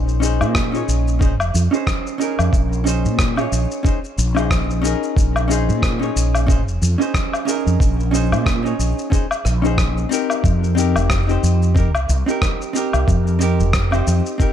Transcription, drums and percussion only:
0.08 shaker
0.23 shaker
0.41 low woodblock, shaker
0.55 kick, cross-stick, shaker
0.75 shaker
0.89 shaker
1.08 shaker
1.21 kick, shaker
1.40 low woodblock, shaker
1.55 shaker
1.74 shaker
1.87 kick, cross-stick, shaker
2.06 shaker
2.21 shaker
2.39 low woodblock, shaker
2.53 kick, shaker
2.73 shaker
2.86 shaker
3.05 shaker
3.19 kick, cross-stick, shaker
3.37 low woodblock, shaker
3.52 shaker
3.71 shaker
3.85 kick, shaker
4.04 shaker
4.18 shaker
4.36 low woodblock, shaker
4.51 kick, cross-stick, shaker
4.70 shaker
4.85 shaker
5.03 shaker
5.17 kick, shaker
5.36 low woodblock, shaker
5.51 shaker
5.69 shaker
5.82 kick, cross-stick, shaker
6.03 shaker
6.17 shaker
6.35 low woodblock, shaker
6.48 kick, shaker
6.68 shaker
6.82 shaker
7.01 shaker
7.14 kick, cross-stick, shaker
7.33 low woodblock, shaker
7.48 shaker
7.67 shaker
7.80 kick, shaker
8.00 shaker
8.14 shaker
8.32 low woodblock, shaker
8.46 kick, cross-stick, shaker
8.66 shaker
8.80 shaker
8.99 shaker
9.12 kick, shaker
9.31 low woodblock, shaker
9.45 cross-stick, shaker
9.65 shaker
9.78 kick, cross-stick, shaker
9.98 shaker
10.12 shaker
10.30 low woodblock, shaker
10.44 kick, shaker
10.64 shaker
10.78 shaker
10.96 low woodblock, shaker
11.10 kick, cross-stick, shaker
11.29 shaker
11.44 shaker
11.62 shaker
11.76 kick, shaker
11.95 low woodblock, shaker
12.09 shaker
12.28 shaker
12.42 kick, cross-stick, shaker
12.61 shaker
12.76 shaker
12.93 low woodblock, shaker
13.08 kick, shaker
13.27 shaker
13.41 shaker
13.60 shaker
13.73 kick, cross-stick, shaker
13.92 low woodblock, shaker
14.07 shaker
14.26 shaker
14.40 kick, shaker

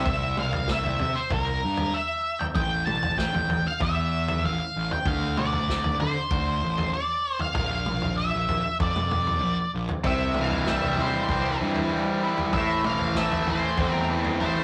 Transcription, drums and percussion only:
0.06 kick, floor tom
0.37 mid tom
0.53 floor tom
0.68 kick, snare
0.84 floor tom
0.99 floor tom
1.30 kick, floor tom
1.77 floor tom
2.40 floor tom
2.55 kick, floor tom
2.87 mid tom
3.03 floor tom
3.18 kick, snare
3.34 floor tom
3.50 floor tom
3.80 kick, floor tom
4.28 floor tom
4.91 floor tom
5.06 kick, floor tom
5.37 mid tom
5.53 floor tom
5.68 kick, snare
5.84 floor tom
6.00 floor tom
6.31 kick, floor tom
6.78 floor tom
7.39 floor tom
7.54 kick, floor tom
7.86 mid tom
8.02 floor tom
8.49 kick, floor tom
8.80 kick, floor tom
8.96 mid tom
9.11 floor tom, mid tom
9.27 floor tom
9.89 floor tom
10.04 kick, floor tom
10.34 mid tom
10.51 floor tom
10.66 kick, snare
10.82 floor tom
10.97 floor tom
11.29 kick, floor tom
11.76 floor tom
12.38 floor tom
12.53 kick, floor tom
12.84 mid tom
12.99 floor tom
13.15 kick, snare
13.32 floor tom
13.47 floor tom
13.78 kick, floor tom
14.25 floor tom

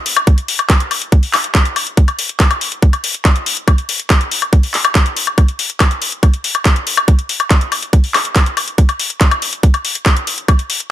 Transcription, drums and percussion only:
0.06 open hi-hat
0.17 closed hi-hat, high woodblock
0.27 kick, closed hi-hat
0.38 closed hi-hat
0.48 open hi-hat
0.59 closed hi-hat, high woodblock
0.70 kick, clap, closed hi-hat
0.80 closed hi-hat
0.91 open hi-hat, high woodblock
1.02 closed hi-hat
1.12 kick, closed hi-hat
1.23 open hi-hat
1.34 clap, open hi-hat, high woodblock
1.44 closed hi-hat
1.55 kick, clap, closed hi-hat
1.65 closed hi-hat
1.76 open hi-hat, high woodblock
1.87 closed hi-hat
1.97 kick, closed hi-hat
2.08 closed hi-hat, high woodblock
2.19 open hi-hat
2.29 closed hi-hat
2.40 kick, clap, closed hi-hat
2.51 closed hi-hat, high woodblock
2.61 open hi-hat
2.72 closed hi-hat
2.82 kick, closed hi-hat
2.93 closed hi-hat, high woodblock
3.04 open hi-hat
3.14 closed hi-hat
3.25 kick, clap, closed hi-hat, high woodblock
3.36 closed hi-hat
3.46 open hi-hat
3.57 closed hi-hat
3.68 kick, closed hi-hat, high woodblock
3.78 closed hi-hat
3.89 open hi-hat
4.00 closed hi-hat
4.10 kick, clap, closed hi-hat, high woodblock
4.21 closed hi-hat
4.31 open hi-hat
4.42 closed hi-hat, high woodblock
4.53 kick, closed hi-hat
4.63 open hi-hat
4.74 clap, open hi-hat
4.85 closed hi-hat, high woodblock
4.95 kick, clap, closed hi-hat
5.06 closed hi-hat
5.17 open hi-hat
5.27 closed hi-hat, high woodblock
5.38 kick, closed hi-hat, high woodblock
5.48 closed hi-hat
5.59 open hi-hat
5.70 closed hi-hat
5.80 kick, clap, closed hi-hat, high woodblock
5.91 closed hi-hat
6.02 open hi-hat
6.12 closed hi-hat
6.23 kick, closed hi-hat, high woodblock
6.34 closed hi-hat
6.44 open hi-hat
6.55 closed hi-hat, high woodblock
6.65 kick, clap, closed hi-hat
6.76 closed hi-hat
6.87 open hi-hat
6.97 closed hi-hat, high woodblock
7.08 kick, closed hi-hat
7.19 closed hi-hat
7.29 open hi-hat
7.40 closed hi-hat, high woodblock
7.51 kick, clap, closed hi-hat
7.61 closed hi-hat
7.72 open hi-hat, high woodblock
7.83 closed hi-hat
7.93 kick, closed hi-hat
8.04 open hi-hat
8.14 clap, open hi-hat, high woodblock
8.25 closed hi-hat
8.36 kick, clap, closed hi-hat
8.46 closed hi-hat
8.57 open hi-hat, high woodblock
8.68 closed hi-hat
8.78 kick, closed hi-hat
8.89 closed hi-hat, high woodblock
9.00 open hi-hat
9.10 closed hi-hat
9.21 kick, clap, closed hi-hat
9.31 closed hi-hat, high woodblock
9.42 open hi-hat
9.53 closed hi-hat
9.63 kick, closed hi-hat
9.74 closed hi-hat, high woodblock
9.85 open hi-hat
9.95 closed hi-hat
10.06 kick, clap, closed hi-hat, high woodblock
10.17 closed hi-hat
10.27 open hi-hat
10.38 closed hi-hat
10.48 kick, closed hi-hat, high woodblock
10.59 closed hi-hat
10.70 open hi-hat
10.80 closed hi-hat

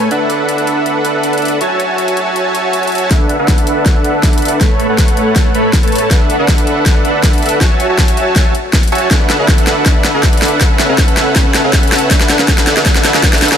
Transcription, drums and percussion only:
0.11 closed hi-hat
0.30 closed hi-hat
0.49 closed hi-hat
0.58 closed hi-hat
0.67 closed hi-hat
0.86 closed hi-hat
1.05 closed hi-hat
1.23 closed hi-hat
1.33 closed hi-hat
1.38 closed hi-hat
1.42 closed hi-hat
1.45 closed hi-hat
1.48 closed hi-hat
1.61 closed hi-hat
1.80 closed hi-hat
1.98 closed hi-hat
2.08 closed hi-hat
2.17 closed hi-hat
2.36 closed hi-hat
2.55 closed hi-hat
2.73 closed hi-hat
2.83 closed hi-hat
2.88 closed hi-hat
2.92 closed hi-hat
2.95 closed hi-hat
2.98 closed hi-hat
3.11 kick, snare, closed hi-hat
3.29 closed hi-hat
3.48 kick, snare, closed hi-hat
3.58 closed hi-hat
3.67 closed hi-hat
3.86 kick, snare, closed hi-hat
4.04 closed hi-hat
4.23 kick, snare, closed hi-hat
4.33 closed hi-hat
4.38 closed hi-hat
4.42 closed hi-hat
4.45 closed hi-hat
4.48 closed hi-hat
4.61 kick, snare, closed hi-hat
4.80 closed hi-hat
4.98 kick, snare, closed hi-hat
5.08 closed hi-hat
5.17 closed hi-hat
5.36 kick, snare, closed hi-hat
5.55 closed hi-hat
5.73 kick, snare, closed hi-hat
5.83 closed hi-hat
5.88 closed hi-hat
5.92 closed hi-hat
5.95 closed hi-hat
5.98 closed hi-hat
6.11 kick, snare, closed hi-hat
6.30 closed hi-hat
6.48 kick, snare, closed hi-hat
6.58 closed hi-hat
6.67 closed hi-hat
6.86 kick, snare, closed hi-hat
7.05 closed hi-hat
7.23 kick, snare, closed hi-hat
7.33 closed hi-hat
7.38 closed hi-hat
7.42 closed hi-hat
7.46 closed hi-hat
7.49 closed hi-hat
7.61 kick, snare, closed hi-hat
7.80 closed hi-hat
7.98 kick, snare, closed hi-hat
8.08 closed hi-hat
8.17 closed hi-hat
8.36 kick, snare, closed hi-hat
8.55 closed hi-hat
8.73 kick, snare, closed hi-hat
8.83 closed hi-hat
8.88 closed hi-hat
8.92 closed hi-hat
8.95 closed hi-hat
8.98 closed hi-hat
9.11 kick, snare, closed hi-hat
9.30 snare, closed hi-hat
9.48 kick, snare, closed hi-hat
9.58 closed hi-hat
9.67 snare, closed hi-hat
9.86 kick, snare, closed hi-hat
10.05 snare, closed hi-hat
10.23 kick, snare, closed hi-hat
10.33 closed hi-hat
10.37 closed hi-hat
10.42 snare, closed hi-hat
10.45 closed hi-hat
10.48 closed hi-hat
10.61 kick, snare, closed hi-hat
10.79 snare, closed hi-hat
10.98 kick, snare, closed hi-hat
11.08 closed hi-hat
11.17 snare, closed hi-hat
11.36 kick, snare, closed hi-hat
11.54 snare, closed hi-hat
11.73 kick, snare, closed hi-hat
11.83 closed hi-hat
11.88 closed hi-hat
11.92 snare, closed hi-hat
11.96 closed hi-hat
11.98 closed hi-hat
12.11 kick, snare, closed hi-hat
12.21 snare
12.30 snare, closed hi-hat
12.39 snare
12.48 kick, snare, closed hi-hat
12.58 snare, closed hi-hat
12.67 snare, closed hi-hat
12.77 snare
12.86 kick, snare, closed hi-hat
12.95 snare
13.05 snare, closed hi-hat
13.14 snare
13.23 kick, snare, closed hi-hat
13.33 snare, closed hi-hat
13.38 closed hi-hat
13.42 snare, closed hi-hat
13.45 closed hi-hat
13.48 snare, closed hi-hat

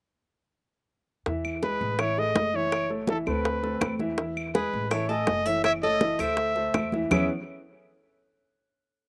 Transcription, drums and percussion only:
1.26 high bongo, high conga
1.45 high conga, claves
1.63 high bongo, high conga
1.81 high conga
1.99 high bongo, high conga, claves
2.18 high conga
2.35 high bongo, low bongo, high conga
2.71 high bongo, high conga, claves
2.90 high conga
3.07 high bongo, high conga
3.26 high bongo, high conga, claves
3.45 high bongo, high conga
3.63 high bongo, high conga
3.81 high bongo, low bongo, high conga, claves
3.99 high bongo, high conga
4.18 high bongo, high conga
4.37 high conga, claves
4.55 high bongo, high conga
4.73 high conga
4.91 high bongo, high conga, claves
5.10 high conga
5.27 high bongo, low bongo, high conga
5.64 high bongo, high conga, claves
5.83 high conga
6.01 high bongo, high conga
6.19 high bongo, high conga, claves
6.37 high bongo, high conga
6.56 high bongo, high conga
6.74 high bongo, low bongo, high conga, claves
6.92 high bongo, high conga
7.11 low bongo, low conga, claves

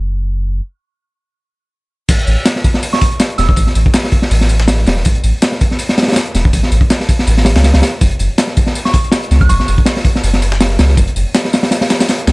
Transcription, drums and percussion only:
2.09 kick, open hi-hat, crash, tambourine
2.19 closed hi-hat
2.27 open hi-hat, tambourine
2.45 snare, open hi-hat, tambourine
2.56 snare
2.64 kick, open hi-hat, tambourine
2.74 snare
2.83 open hi-hat, tambourine
2.93 snare
3.01 kick, open hi-hat
3.11 closed hi-hat
3.20 snare, open hi-hat, tambourine
3.30 closed hi-hat
3.38 snare, open hi-hat, tambourine
3.49 kick
3.56 kick, open hi-hat, tambourine
3.67 snare
3.75 open hi-hat, tambourine
3.86 kick
3.94 snare, open hi-hat, tambourine
4.04 snare
4.12 kick, open hi-hat
4.22 snare
4.31 open hi-hat, tambourine
4.41 snare
4.49 open hi-hat, tambourine
4.60 snare
4.68 snare, open hi-hat, tambourine
4.78 snare
4.87 snare, open hi-hat, tambourine
4.97 snare
5.05 kick, open hi-hat, tambourine
5.15 closed hi-hat
5.24 open hi-hat, tambourine
5.42 snare, open hi-hat, tambourine
5.52 snare
5.61 kick, open hi-hat, tambourine
5.71 snare
5.79 open hi-hat, tambourine
5.89 snare
5.98 snare, open hi-hat
6.03 snare, open hi-hat
6.08 snare, open hi-hat
6.12 snare, open hi-hat
6.16 snare, open hi-hat, tambourine
6.26 closed hi-hat
6.35 snare, open hi-hat, tambourine
6.45 kick
6.53 kick, open hi-hat, tambourine
6.63 snare
6.72 open hi-hat, tambourine
6.81 kick
6.90 snare, open hi-hat, tambourine
7.00 snare
7.09 kick, open hi-hat, tambourine
7.19 snare
7.27 open hi-hat, tambourine
7.37 snare
7.45 snare, open hi-hat, tambourine
7.56 snare, open hi-hat
7.64 snare, open hi-hat, tambourine
7.74 snare, open hi-hat
7.82 snare, open hi-hat, tambourine
8.01 kick, open hi-hat, tambourine
8.11 closed hi-hat
8.19 open hi-hat, tambourine
8.38 snare, open hi-hat, tambourine
8.47 snare
8.57 kick, open hi-hat, tambourine
8.67 snare
8.75 open hi-hat, tambourine
8.85 snare
8.94 kick, open hi-hat
9.04 closed hi-hat
9.12 snare, open hi-hat, tambourine
9.23 closed hi-hat
9.31 snare, open hi-hat, tambourine
9.41 kick
9.49 kick, open hi-hat, tambourine
9.60 snare
9.68 open hi-hat, tambourine
9.78 kick
9.86 snare, open hi-hat, tambourine
9.97 snare
10.05 kick, open hi-hat
10.15 snare
10.23 open hi-hat, tambourine
10.33 snare
10.42 open hi-hat, tambourine
10.52 snare
10.60 snare, open hi-hat, tambourine
10.70 snare
10.79 snare, open hi-hat, tambourine
10.89 snare
10.97 kick, open hi-hat, tambourine
11.08 closed hi-hat
11.16 open hi-hat, tambourine
11.35 snare, open hi-hat, tambourine
11.45 snare
11.53 snare, open hi-hat, tambourine
11.63 snare, open hi-hat
11.71 snare, open hi-hat, tambourine
11.81 snare, open hi-hat
11.90 snare, open hi-hat, tambourine
12.00 snare, open hi-hat, tambourine
12.09 snare, open hi-hat, tambourine
12.19 closed hi-hat
12.27 snare, open hi-hat, tambourine

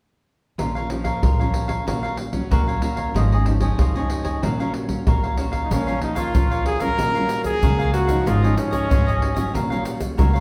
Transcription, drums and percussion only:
0.59 pandeiro, surdo
0.76 pandeiro
0.90 pandeiro
1.05 pandeiro, surdo
1.23 pandeiro, surdo
1.41 pandeiro
1.54 pandeiro
1.69 pandeiro, surdo
1.88 pandeiro, surdo
2.04 pandeiro
2.17 pandeiro
2.33 pandeiro, surdo
2.51 pandeiro, surdo
2.69 pandeiro
2.82 pandeiro
2.97 pandeiro, surdo
3.16 pandeiro, surdo
3.32 pandeiro
3.46 pandeiro, surdo
3.60 pandeiro, surdo
3.79 pandeiro, surdo
3.96 pandeiro
4.10 pandeiro
4.25 pandeiro, surdo
4.43 pandeiro, surdo
4.60 pandeiro
4.74 pandeiro
4.89 pandeiro, surdo
5.07 pandeiro, surdo
5.24 pandeiro
5.38 pandeiro
5.53 pandeiro, surdo
5.71 pandeiro, shaker, surdo
5.88 pandeiro, shaker
6.02 pandeiro, surdo
6.16 pandeiro, shaker, surdo
6.35 pandeiro, shaker, surdo
6.51 pandeiro, shaker
6.66 pandeiro
6.80 pandeiro, shaker, surdo
6.99 pandeiro, shaker, surdo
7.15 pandeiro, shaker
7.29 pandeiro, shaker
7.44 pandeiro, shaker, surdo
7.63 pandeiro, shaker, surdo
7.80 pandeiro, shaker
7.94 pandeiro, shaker
8.09 pandeiro, shaker, surdo
8.27 pandeiro, shaker, surdo
8.44 pandeiro, shaker
8.58 pandeiro, shaker
8.73 pandeiro, shaker, surdo
8.91 pandeiro, shaker, surdo
9.08 pandeiro, shaker
9.22 pandeiro
9.37 pandeiro, shaker, surdo
9.55 pandeiro, shaker, surdo
9.72 pandeiro, shaker
9.85 pandeiro, shaker
10.00 pandeiro, shaker, surdo
10.19 pandeiro, shaker, surdo
10.36 pandeiro, shaker

